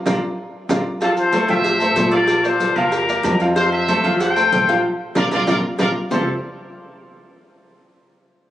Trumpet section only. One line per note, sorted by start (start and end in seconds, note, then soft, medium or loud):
1.02 1.10 F4 medium
1.02 1.09 A4 medium
1.19 1.49 A4 medium
1.19 1.48 C5 medium
1.50 2.10 C5 medium
1.50 2.09 E5 loud
2.12 2.43 A#4 medium
2.12 2.42 D5 loud
2.44 2.78 A4 medium
2.44 2.76 C5 medium
2.76 3.41 G4 medium
2.76 3.40 A#4 loud
3.56 3.73 A4 medium
3.56 3.71 C5 loud
3.72 4.18 C5 medium
3.72 4.17 E5 loud
4.20 4.81 C5 medium
4.20 4.80 G5 loud
5.17 5.24 F4 medium
5.17 5.24 A#4 loud
5.17 5.24 D5 loud
5.33 5.41 F4 loud
5.33 5.41 A#4 medium
5.33 5.41 D5 loud
5.49 5.56 F4 loud
5.49 5.56 A#4 loud
5.49 5.56 D5 medium
5.80 5.88 F4 medium
5.80 5.88 A#4 loud
5.80 5.88 D5 medium
6.12 6.27 A4 medium